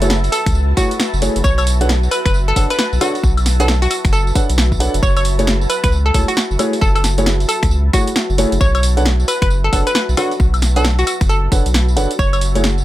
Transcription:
Already playing: F#1 F#4 B4 E5 A5
0.02 A3 E4 F#4 G#4 C#5, closed hi-hat, tambourine
0.10 snare, tambourine
0.24 open hi-hat, tambourine
0.32 A4, open hi-hat, tambourine, high woodblock
0.46 C#2, finger snap, kick, closed hi-hat, tambourine
0.55 tambourine
0.77 A3 E4 F#4 G#4 C#5, kick, open hi-hat, tambourine
0.91 closed hi-hat, tambourine
1.00 finger snap, snare, closed hi-hat, tambourine
1.14 F#1, tambourine
1.22 A3 E4 F#4 G#4 C#5, open hi-hat, tambourine
1.36 F#1, closed hi-hat, tambourine
1.44 B1 C#5, kick, tambourine
1.58 C#5, closed hi-hat, tambourine, high woodblock
1.67 open hi-hat, tambourine
1.81 D4 A4 B4 C#5 F#5, closed hi-hat, tambourine
1.89 snare, tambourine
2.03 tambourine
2.11 B4, open hi-hat, tambourine, high woodblock
2.25 F#1 B4, finger snap, kick, closed hi-hat, tambourine
2.34 tambourine
2.48 A4
2.56 F#1 D4 A4 B4 C#5 F#5, kick, open hi-hat, tambourine
2.70 B4, closed hi-hat, tambourine
2.79 B4, snare, closed hi-hat, tambourine
2.93 B1, tambourine
3.01 D4 F#4 A4 B4 C#5 F#5, open hi-hat, tambourine, high woodblock
3.15 open hi-hat, tambourine
3.23 B1, kick, tambourine
3.37 closed hi-hat, tambourine, high woodblock
3.46 snare, open hi-hat, tambourine
3.60 D4 A4 B4 C#5 F#5, closed hi-hat, tambourine
3.68 snare, tambourine
3.82 F#4, open hi-hat, tambourine
3.90 F#4, open hi-hat, tambourine, high woodblock
4.05 F#1, finger snap, kick, closed hi-hat, tambourine
4.13 A4, tambourine
4.27 tambourine
4.35 D4 A4 B4 C#5 F#5, kick, open hi-hat, tambourine
4.49 B1, closed hi-hat, tambourine
4.58 finger snap, snare, closed hi-hat, tambourine
4.72 kick, tambourine
4.80 D4 A4 B4 C#5 F#5, open hi-hat, tambourine
4.94 F#1, closed hi-hat, tambourine
5.03 F#1 C#5, kick, tambourine
5.17 C#5, closed hi-hat, tambourine, high woodblock
5.25 open hi-hat, tambourine
5.39 A3 E4 F#4 G#4 C#5, closed hi-hat, tambourine
5.47 snare, tambourine
5.61 tambourine
5.70 B4, open hi-hat, tambourine, high woodblock
5.84 C#2 B4, finger snap, kick, closed hi-hat, tambourine
5.92 tambourine
6.06 A4
6.14 C#2 A3 E4 F#4 G#4 A4 C#5, kick, open hi-hat, tambourine
6.28 F#4, closed hi-hat, tambourine
6.37 snare, closed hi-hat, tambourine
6.51 F#1, tambourine
6.59 A3 E4 F#4 G#4 C#5, open hi-hat, tambourine, high woodblock
6.73 open hi-hat, tambourine
6.81 F#1 A4, kick, tambourine
6.95 A4, closed hi-hat, tambourine, high woodblock
7.04 snare, open hi-hat, tambourine
7.18 A3 E4 F#4 G#4 C#5, closed hi-hat, tambourine
7.26 snare, tambourine
7.40 open hi-hat, tambourine
7.49 A4, open hi-hat, tambourine, high woodblock
7.63 C#2, finger snap, kick, closed hi-hat, tambourine
7.71 tambourine
7.93 A3 E4 F#4 G#4 C#5, kick, open hi-hat, tambourine
8.07 closed hi-hat, tambourine
8.16 finger snap, snare, closed hi-hat, tambourine
8.30 F#1, tambourine
8.38 A3 E4 F#4 G#4 C#5, open hi-hat, tambourine
8.52 F#1, closed hi-hat, tambourine
8.60 B1 F#4 C#5, kick, tambourine
8.75 C#5, closed hi-hat, tambourine, high woodblock
8.83 open hi-hat, tambourine
8.97 D4 A4 B4 C#5 F#5, closed hi-hat, tambourine
9.06 snare, tambourine
9.20 tambourine
9.28 B4, open hi-hat, tambourine, high woodblock
9.42 F#1 B4, finger snap, kick, closed hi-hat, tambourine
9.50 tambourine
9.64 A4
9.73 F#1 D4 A4 B4 C#5 F#5, kick, open hi-hat, tambourine
9.87 B4, closed hi-hat, tambourine
9.95 B4, snare, closed hi-hat, tambourine
10.09 B1, tambourine
10.17 D4 F#4 A4 B4 C#5 F#5, open hi-hat, tambourine, high woodblock
10.31 open hi-hat, tambourine
10.40 B1, kick, tambourine
10.54 closed hi-hat, tambourine, high woodblock
10.62 snare, open hi-hat, tambourine
10.76 D4 A4 B4 C#5 F#5, closed hi-hat, tambourine
10.85 snare, tambourine
10.99 F#4, open hi-hat, tambourine
11.07 F#4, open hi-hat, tambourine, high woodblock
11.21 F#1, finger snap, kick, closed hi-hat, tambourine
11.29 A4, tambourine
11.52 F#1 D4 A4 B4 C#5 F#5, kick, open hi-hat, tambourine
11.66 B1, closed hi-hat, tambourine
11.74 finger snap, snare, closed hi-hat, tambourine
11.88 tambourine
11.97 F#1 D4 A4 B4 C#5 F#5, open hi-hat, tambourine
12.11 closed hi-hat, tambourine
12.19 F#1 C#5, kick, tambourine
12.33 C#5, closed hi-hat, tambourine, high woodblock
12.41 open hi-hat, tambourine
12.55 A3 E4 F#4 G#4 C#5, closed hi-hat, tambourine
12.64 snare, tambourine
12.78 tambourine

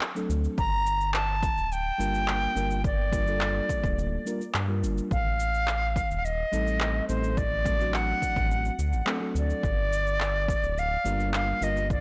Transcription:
0.01 clap, cabasa
0.15 F#3 A3 C4 D4 A4, cabasa
0.29 D2, cabasa
0.44 cabasa
0.58 G1 A#5, kick, cabasa
0.87 cabasa
1.01 cabasa
1.14 A5, clap, cabasa
1.43 kick, cabasa
1.57 D1, cabasa
1.72 G5, cabasa
1.98 G1 G3 A#3 D4 F4 A#4, cabasa
2.14 cabasa
2.28 clap, cabasa
2.55 G1 G3 A#3 D4 F4 A#4, cabasa
2.71 cabasa
2.84 D5, kick, cabasa
3.12 G3 A#3 D4 F4 A#4, kick, cabasa
3.25 G3 A#3 D4 F4 A4, cabasa
3.41 clap, cabasa
3.69 kick, cabasa
3.84 D1, kick, cabasa
3.99 cabasa
4.25 G3 A#3 D4 F4 A#4, cabasa
4.41 cabasa
4.54 G2, clap, cabasa
4.68 G3 A#3 D4 F4 A#4
4.83 G1, cabasa
4.98 cabasa
5.11 A1 F5, kick, cabasa
5.40 cabasa
5.54 cabasa
5.67 clap, cabasa
5.96 kick, cabasa
6.11 D#1, cabasa
6.18 F5
6.25 D#5, cabasa
6.52 A1 G3 A3 C4 D#4 A4, cabasa
6.67 cabasa
6.80 clap, cabasa
7.08 A1 G3 A3 C4 D#4 A4 C5, cabasa
7.24 cabasa
7.37 D5, kick, cabasa
7.65 F#3 A3 C4 D4 A4, kick, cabasa
7.78 F#3 A3 C4 D4 F#4, cabasa
7.94 F#5, clap, cabasa
8.22 kick, cabasa
8.36 A1, kick, cabasa
8.51 cabasa
8.65 cabasa
8.79 D2, cabasa
8.93 A1, cabasa
9.05 F#3 A3 C4 D4 A4, clap, cabasa
9.20 F#3 A3 C4 D4 A4
9.35 D2 D5, cabasa
9.50 cabasa
9.63 G1, kick, cabasa
9.93 cabasa
10.07 cabasa
10.20 clap, cabasa
10.48 kick, cabasa
10.63 D1, cabasa
10.78 F5, cabasa
11.04 G1 G3 A#3 D4 F4 A#4, cabasa
11.20 cabasa
11.34 F5, clap, cabasa
11.61 G1 G3 A#3 D4 F4 A#4 D#5, cabasa
11.77 cabasa
11.90 D5, kick, cabasa

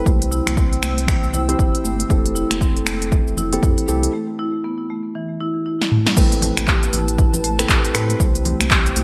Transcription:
0.05 C2 A3 C4 E4 C5 G5 E6, kick, high conga, shaker
0.22 closed hi-hat, muted conga, shaker
0.31 E4, shaker
0.47 C2, finger snap, closed hi-hat, muted conga, high conga, low conga, shaker
0.57 C4, kick, shaker
0.72 closed hi-hat, muted conga, shaker
0.82 C2 A3, finger snap, high conga, shaker
0.98 closed hi-hat, shaker
1.07 E3, finger snap, kick, muted conga, high conga, shaker
1.23 C2, shaker
1.33 E4, muted conga, high conga, low conga, shaker
1.49 C4 E4 G4 C5, closed hi-hat, shaker
1.59 G1 E4, kick, muted conga, shaker
1.75 closed hi-hat, shaker
1.84 G1 A3, high conga, shaker
1.99 closed hi-hat, muted conga, shaker
2.09 F1 A3 C4 E4 G4 A4, kick, high conga, shaker
2.25 closed hi-hat, muted conga, shaker
2.35 E4, shaker
2.51 F1, finger snap, closed hi-hat, muted conga, high conga, shaker
2.61 C4, kick, shaker
2.76 closed hi-hat, muted conga, shaker
2.85 F1 A3, finger snap, high conga, shaker
3.02 closed hi-hat, shaker
3.11 E3, kick, muted conga, shaker
3.27 F1, shaker
3.37 E4, muted conga, low conga, shaker
3.52 C4 E4 G4 A4, closed hi-hat, high conga, shaker
3.62 F2 E4, kick, muted conga, shaker
3.78 closed hi-hat, shaker
3.88 C2 A3 C4 E4 G4 A4, shaker
4.03 closed hi-hat, muted conga, shaker
4.13 A3
4.39 E4
4.64 B3
4.90 A3
5.15 E3
5.41 E4
5.66 E4
5.82 snare
5.91 A3, mid tom
6.07 snare
6.16 A1 A3 C4 E4 A4 B4 A5, kick, crash, high conga, shaker
6.32 closed hi-hat, muted conga, shaker
6.42 A3, open hi-hat, low conga, shaker
6.57 A1, finger snap, closed hi-hat, muted conga, high conga, shaker
6.68 G4, kick, clap, shaker
6.83 closed hi-hat, muted conga, shaker
6.93 A1 E4, open hi-hat, high conga, low conga, shaker
7.08 closed hi-hat, shaker
7.18 E4, kick, muted conga, shaker
7.33 A1, closed hi-hat, low conga, shaker
7.44 A3, open hi-hat, muted conga, shaker
7.59 C4 E4 A4 B4, finger snap, closed hi-hat, high conga, shaker
7.69 A1 G4, kick, clap, muted conga, shaker
7.85 closed hi-hat, shaker
7.94 A2 C4 E4 A4 B4, finger snap, open hi-hat, shaker
8.09 closed hi-hat, muted conga, shaker
8.20 C2 A3 C4 E4 G4 C5 G5 E6, kick, high conga, shaker
8.35 closed hi-hat, muted conga, shaker
8.45 A3, open hi-hat, low conga, shaker
8.60 C2, finger snap, closed hi-hat, muted conga, high conga, shaker
8.71 G4, kick, clap, shaker
8.85 closed hi-hat, muted conga, shaker
8.96 C2 E4, open hi-hat, high conga, shaker

